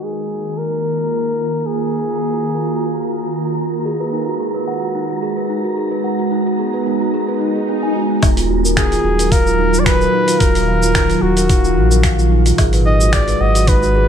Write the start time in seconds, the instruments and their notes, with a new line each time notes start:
Already playing: ambient pad D#3 A#3 D#4 A#5, synth texture A#4 A#5
0.01 ambient pad F4, muted trumpet G#4
0.58 muted trumpet A#4
1.46 ambient pad F#4
1.66 muted trumpet G#4
3.85 ambient pad G#3, steel tongue drum G#4
4.00 steel tongue drum B4
4.13 steel tongue drum D#4
4.28 steel tongue drum F#4
4.40 steel tongue drum G#4
4.54 steel tongue drum B4
4.61 ambient pad D#4
4.68 steel tongue drum F#5
4.82 steel tongue drum F#4
4.95 steel tongue drum D#4, ambient pad A#5
5.09 steel tongue drum F#4
5.22 steel tongue drum G#4
5.37 steel tongue drum B4
5.50 steel tongue drum D#4
5.61 ambient pad B3, steel tongue drum F#4
5.77 steel tongue drum G#4
5.92 steel tongue drum B4
6.04 steel tongue drum F#5
6.19 steel tongue drum F#4
6.32 steel tongue drum D#4
6.47 steel tongue drum F#4
6.59 steel tongue drum G#4
6.74 steel tongue drum B4
6.86 steel tongue drum D#4
7.01 steel tongue drum F#4
7.13 steel tongue drum G#4, swell
7.28 steel tongue drum B4
7.41 steel tongue drum D#4
7.56 steel tongue drum G#4
7.68 steel tongue drum D#4
7.83 steel tongue drum G#5
7.95 steel tongue drum F#4
8.10 steel tongue drum D#4
8.23 sub bass D#1, ambient pad D#3, steel tongue drum D#4, kick, open hi-hat, cabasa, low woodblock
8.37 steel tongue drum F4, open hi-hat, cabasa
8.48 ambient pad F#3, steel tongue drum F#4
8.65 steel tongue drum A#4, cabasa
8.77 ambient pad A#2, steel tongue drum D#4, muted trumpet G#4, finger snap, kick, open hi-hat, cabasa
8.92 steel tongue drum F4, open hi-hat, cabasa
9.01 sub bass D#1, ambient pad F5
9.05 steel tongue drum F#4
9.19 steel tongue drum A#4, open hi-hat, cabasa
9.32 muted trumpet A#4, steel tongue drum F5, kick, open hi-hat, cabasa
9.47 steel tongue drum F4, cabasa
9.59 steel tongue drum D#4
9.74 steel tongue drum F4, cabasa
9.79 muted trumpet D5
9.85 steel tongue drum F#4, muted trumpet B4, finger snap, kick, open hi-hat, cabasa
10.01 steel tongue drum A#4, cabasa
10.14 steel tongue drum D#4
10.28 steel tongue drum F4, open hi-hat, cabasa
10.39 sub bass D#1, steel tongue drum F#4, muted trumpet A#4, kick, open hi-hat, cabasa
10.55 steel tongue drum A#4, open hi-hat, cabasa
10.68 steel tongue drum F5
10.82 steel tongue drum F4, cabasa
10.95 steel tongue drum D#4, finger snap, kick, open hi-hat, cabasa
11.10 steel tongue drum F4, open hi-hat, cabasa
11.22 sub bass D#1, muted trumpet F#4, steel tongue drum F#4
11.37 steel tongue drum A#4, open hi-hat, cabasa
11.49 steel tongue drum D#4, kick, open hi-hat, cabasa
11.64 steel tongue drum F4, cabasa
11.76 sub bass A#1, steel tongue drum F#4
11.91 steel tongue drum A#4, cabasa
12.03 steel tongue drum F5, finger snap, kick, open hi-hat, cabasa
12.19 steel tongue drum F4, cabasa
12.32 steel tongue drum D#4
12.46 steel tongue drum F4, open hi-hat, cabasa
12.58 sub bass G#1, ambient pad G#3, steel tongue drum G#4, kick, open hi-hat, cabasa, low woodblock
12.73 steel tongue drum B4, open hi-hat, cabasa
12.86 steel tongue drum D#4, muted trumpet D#5
13.01 steel tongue drum F#4, cabasa
13.13 muted trumpet D5, finger snap, kick, open hi-hat, cabasa
13.22 ambient pad B4
13.28 steel tongue drum B4, open hi-hat, cabasa
13.34 ambient pad D#4
13.40 sub bass G#1, muted trumpet D#5, steel tongue drum F#5
13.54 steel tongue drum F#4, ambient pad A#5, open hi-hat, cabasa
13.67 steel tongue drum D#4, muted trumpet B4, kick, open hi-hat, cabasa
13.83 steel tongue drum F#4, cabasa
13.96 steel tongue drum G#4